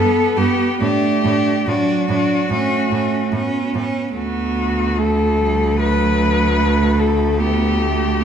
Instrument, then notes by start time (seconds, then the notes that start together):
cello
Already playing: B3 A4
0.37 G2 B3 G4
0.81 A2 A3 D4 G4
1.25 A2 D4
1.67 A2 F#3 D4 F#4
2.09 A2 D4
2.50 A2 A3 C#4
2.91 A2 C#4
3.32 A2 B3 C#4
3.75 A2 C#4
4.16 D2 A3 B3 F#4
4.98 A3 A4
5.39 G3
5.80 F#3 B4
6.58 A3
7.00 A4
7.39 B3 G4
7.82 A3
8.21 B3